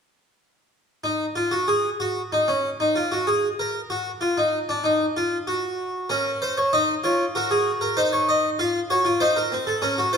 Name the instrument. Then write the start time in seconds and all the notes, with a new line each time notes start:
harpsichord
1.04 D#4
1.36 F4
1.51 F#4
1.68 G#4
2.00 F#4
2.32 D#4
2.48 C#4
2.80 D#4
2.96 F4
3.12 F#4
3.27 G#4
3.59 A#4
3.90 F#4
4.21 F4
4.37 D#4
4.69 D4
4.84 D#4
5.17 F4
5.47 F#4
6.10 C#4 A#4
6.42 C5
6.58 C#5
6.73 D#4 D#5
7.04 F4 C#5
7.35 F#4 A#4
7.51 G#4
7.81 A#4
7.97 D#4 C5
8.13 C#5
8.29 D#5
8.59 F4 F5
8.90 F#4 C#5
9.05 F4
9.20 D#4 C5
9.36 A#4
9.52 C4
9.67 A4
9.82 C#4 A#4
9.98 F#4
10.13 F4 C5